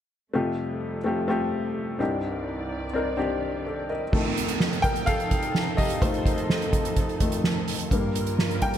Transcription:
0.33 1.98 F2 medium
0.33 1.96 F2 medium
0.33 4.09 C3 soft
0.33 1.96 C3 soft
0.33 1.98 G3 soft
0.33 1.98 A3 medium
0.33 0.97 A3 medium
0.33 0.98 C4 soft
0.33 0.98 F4 medium
0.33 0.98 G4 medium
1.04 1.26 A3 medium
1.04 1.26 C4 medium
1.04 1.27 F4 soft
1.04 1.27 G4 medium
1.28 2.00 A3 medium
1.28 1.97 C4 medium
1.28 2.00 F4 medium
1.28 1.99 G4 medium
1.99 3.85 C2 medium
1.99 4.11 C2 medium
1.99 3.85 G2 medium
1.99 4.11 D#3 medium
1.99 2.84 C4 medium
1.99 2.84 D4 medium
1.99 2.85 D#4 medium
1.99 2.85 G4 medium
1.99 4.11 D5 medium
2.93 3.15 C4 medium
2.93 3.16 D4 medium
2.93 3.16 D#4 medium
2.93 3.16 A#4 medium
3.17 4.02 C4 medium
3.17 4.03 D4 medium
3.17 4.03 D#4 medium
3.17 4.03 G4 medium
3.67 3.89 A4 soft
3.67 3.89 D5 soft
3.90 4.35 A#4 soft
3.90 4.34 D#5 soft
4.13 4.80 F2 soft
4.13 7.87 F2 medium
4.13 7.87 C3 medium
4.13 4.80 D#3 soft
4.13 4.81 A3 medium
4.13 7.87 D#4 medium
4.13 7.87 A4 medium
4.13 kick medium
4.13 crash medium
4.13 downlifter medium
4.37 closed hi-hat medium
4.48 closed hi-hat soft
4.60 snare loud
4.73 closed hi-hat soft
4.82 4.90 A#4 medium
4.82 4.88 G5 loud
4.82 kick medium
4.82 closed hi-hat medium
4.96 closed hi-hat soft
5.06 5.75 A4 medium
5.06 5.74 F5 loud
5.06 kick medium
5.06 closed hi-hat medium
5.20 closed hi-hat soft
5.31 kick medium
5.31 closed hi-hat medium
5.43 closed hi-hat soft
5.55 snare medium
5.77 6.01 G4 medium
5.77 6.00 D#5 medium
5.77 kick medium
5.77 open hi-hat medium
5.90 closed hi-hat soft
6.02 7.20 F2 medium
6.02 7.20 D#3 soft
6.02 7.20 A3 medium
6.02 6.93 D#4 medium
6.02 6.93 C5 medium
6.02 kick loud
6.02 closed hi-hat medium
6.14 closed hi-hat soft
6.26 kick medium
6.26 closed hi-hat medium
6.38 closed hi-hat soft
6.50 snare loud
6.62 closed hi-hat soft
6.73 kick medium
6.73 closed hi-hat medium
6.85 closed hi-hat soft
6.96 kick medium
6.96 closed hi-hat medium
7.09 closed hi-hat soft
7.20 7.42 F2 soft
7.20 7.42 D#3 soft
7.20 7.42 A3 medium
7.20 kick medium
7.20 closed hi-hat medium
7.32 closed hi-hat medium
7.44 snare loud
7.68 snare soft
7.68 open hi-hat medium
7.80 closed hi-hat soft
7.91 8.23 G2 medium
7.91 8.78 G2 medium
7.91 8.78 D#3 medium
7.91 8.23 G3 soft
7.91 8.24 A#3 medium
7.91 8.78 F4 medium
7.91 8.78 A#4 medium
7.91 kick medium
7.91 closed hi-hat medium
8.15 closed hi-hat medium
8.27 closed hi-hat soft
8.39 snare loud
8.51 closed hi-hat soft
8.62 8.78 G2 soft
8.62 8.78 G3 soft
8.62 8.78 A#3 medium
8.62 8.78 A#4 medium
8.62 8.78 G5 loud
8.62 kick medium
8.62 closed hi-hat medium
8.74 closed hi-hat soft

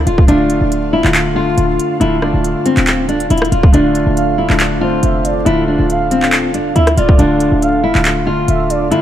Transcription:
0.00 0.27 D3 loud
0.00 0.28 A3 medium
0.00 7.15 D4 medium
0.00 0.29 F4 loud
0.00 7.15 F4 medium
0.00 0.25 A4 medium
0.00 7.15 F5 medium
0.07 0.27 D1 loud
0.07 0.23 F4 medium
0.07 closed hi-hat medium
0.18 kick loud
0.27 0.60 D1 loud
0.27 0.54 D3 medium
0.27 0.55 A3 loud
0.27 0.89 D4 loud
0.27 0.55 F4 loud
0.27 3.70 A4 medium
0.27 closed hi-hat medium
0.50 closed hi-hat medium
0.60 1.03 D1 loud
0.60 0.95 D3 medium
0.60 0.96 A3 medium
0.60 0.96 F4 medium
0.72 closed hi-hat medium
0.93 1.09 E4 medium
1.03 1.56 D1 loud
1.03 1.30 D3 medium
1.03 1.30 A3 medium
1.03 1.31 F4 medium
1.03 clap medium
1.14 clap loud
1.14 closed hi-hat medium
1.35 1.88 D3 medium
1.35 1.89 A3 medium
1.35 1.97 F4 medium
1.35 1.89 F4 medium
1.58 1.78 D1 loud
1.58 closed hi-hat medium
1.79 closed hi-hat medium
2.00 2.33 D1 loud
2.00 2.27 D3 loud
2.00 2.27 A3 medium
2.00 2.17 E4 loud
2.00 2.28 F4 loud
2.00 closed hi-hat medium
2.22 2.39 D4 medium
2.22 cross-stick medium
2.33 2.55 D1 loud
2.33 3.03 D3 medium
2.33 3.03 A3 medium
2.33 3.04 F4 medium
2.44 closed hi-hat medium
2.66 3.06 C4 medium
2.66 closed hi-hat medium
2.77 3.28 D1 loud
2.77 clap medium
2.77 closed hi-hat soft
2.87 clap loud
2.87 closed hi-hat medium
3.08 3.25 D4 medium
3.08 closed hi-hat soft
3.20 closed hi-hat medium
3.30 3.51 D1 loud
3.30 3.47 E4 medium
3.30 closed hi-hat medium
3.38 closed hi-hat medium
3.42 cross-stick loud
3.42 closed hi-hat soft
3.52 3.73 D1 loud
3.52 3.68 F4 medium
3.52 closed hi-hat medium
3.63 kick medium
3.72 4.05 D1 loud
3.72 3.99 D3 loud
3.72 4.00 A3 loud
3.72 4.34 D4 loud
3.72 4.00 F4 loud
3.72 9.02 A4 medium
3.72 closed hi-hat medium
3.95 closed hi-hat medium
4.06 4.48 D1 loud
4.06 4.40 D3 medium
4.06 4.41 A3 medium
4.06 4.42 F4 medium
4.17 4.57 F5 medium
4.17 closed hi-hat medium
4.38 4.55 E4 medium
4.49 5.01 D1 loud
4.49 4.75 D3 medium
4.49 4.76 A3 medium
4.49 4.76 D4 medium
4.49 clap medium
4.60 clap loud
4.60 closed hi-hat medium
4.81 5.34 D3 medium
4.81 5.34 A3 medium
4.81 5.35 C4 medium
4.81 5.42 F4 medium
5.03 5.44 F1 loud
5.03 5.24 E5 medium
5.03 closed hi-hat medium
5.24 5.45 D5 medium
5.24 closed hi-hat medium
5.45 5.78 D1 loud
5.45 5.72 D3 loud
5.45 5.73 A3 medium
5.45 5.63 E4 loud
5.45 5.73 F4 loud
5.45 closed hi-hat medium
5.68 5.84 D4 medium
5.78 6.72 D1 loud
5.78 6.48 D3 medium
5.78 6.49 A3 medium
5.78 6.49 F4 medium
5.89 6.30 F5 medium
5.89 closed hi-hat medium
6.11 6.52 C4 medium
6.11 closed hi-hat medium
6.22 clap medium
6.32 clap loud
6.32 closed hi-hat medium
6.54 6.71 D4 medium
6.54 closed hi-hat medium
6.75 6.96 D2 loud
6.75 6.92 E4 medium
6.75 6.96 E5 medium
6.75 closed hi-hat medium
6.87 cross-stick loud
6.87 closed hi-hat medium
6.97 7.18 D1 loud
6.97 7.14 F4 medium
6.97 7.18 D5 medium
6.97 closed hi-hat medium
7.09 kick medium
7.18 7.51 D1 loud
7.18 7.45 D3 loud
7.18 7.45 A3 medium
7.18 9.02 D4 medium
7.18 7.80 D4 loud
7.18 9.02 F4 medium
7.18 7.46 F4 loud
7.18 9.02 F5 medium
7.18 closed hi-hat medium
7.40 closed hi-hat medium
7.51 7.93 D1 loud
7.51 7.86 D3 medium
7.51 7.86 A3 medium
7.51 7.87 F4 medium
7.62 8.03 F5 medium
7.62 closed hi-hat medium
7.84 8.00 E4 medium
7.94 8.46 D1 loud
7.94 8.20 D3 medium
7.94 8.21 A3 medium
7.94 8.21 F4 medium
7.94 clap medium
8.05 clap loud
8.05 closed hi-hat medium
8.25 8.79 D3 medium
8.25 8.80 A3 medium
8.25 8.88 F4 medium
8.25 8.80 F4 medium
8.48 8.91 D1 loud
8.48 8.69 E5 medium
8.48 closed hi-hat medium
8.70 8.90 D5 medium
8.70 closed hi-hat medium
8.90 9.02 D3 loud
8.90 9.02 A3 medium
8.90 9.02 E4 loud
8.90 9.02 F4 loud
8.90 closed hi-hat medium

